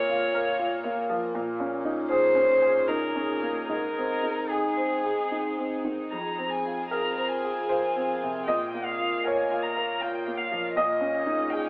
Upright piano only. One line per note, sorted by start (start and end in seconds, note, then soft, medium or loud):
0.00 1.31 A#2 medium
0.00 0.84 A#3 soft
0.00 0.09 F4 soft
0.00 0.24 A#4 medium
0.09 0.49 F4 medium
0.34 0.74 A#4 medium
0.59 1.00 F4 medium
0.84 1.25 A#3 medium
1.09 1.35 F3 medium
1.35 3.65 A#2 medium
1.60 2.01 C#4 medium
1.85 2.26 D#4 medium
2.10 2.52 G#4 medium
2.35 2.77 C#4 medium
2.62 3.04 G#4 soft
2.88 3.31 D#4 soft
3.16 3.58 C#4 soft
3.42 3.69 A#3 soft
3.69 6.08 G#2 soft
3.98 4.41 C4 soft
4.23 4.67 D#4 soft
4.52 4.94 G#4 soft
4.77 5.21 C5 soft
5.04 5.48 G#4 soft
5.32 5.75 D#4 soft
5.58 6.01 C4 soft
5.84 6.12 D#3 soft
6.12 8.43 F2 soft
6.38 6.80 C4 soft
6.65 7.07 F4 soft
6.91 7.33 G#4 soft
6.91 7.66 A#4 medium
7.17 7.59 C5 soft
7.44 7.86 G#4 soft
7.69 8.11 F4 soft
7.69 8.43 C5 medium
7.96 8.37 C4 soft
8.23 8.48 C3 soft
8.47 10.72 A#2 medium
8.47 9.21 D#5 medium
8.74 9.15 A#3 soft
9.00 9.41 F4 soft
9.25 9.66 A#4 soft
9.25 10.36 C#5 medium
9.51 9.92 F4 soft
9.76 10.16 A#4 soft
10.02 10.41 F4 soft
10.27 10.67 A#3 soft
10.52 10.76 F3 soft
10.76 11.69 A#2 medium
10.76 11.69 D#5 medium
11.01 11.42 C#4 soft
11.27 11.67 D#4 soft
11.53 11.69 G#4 soft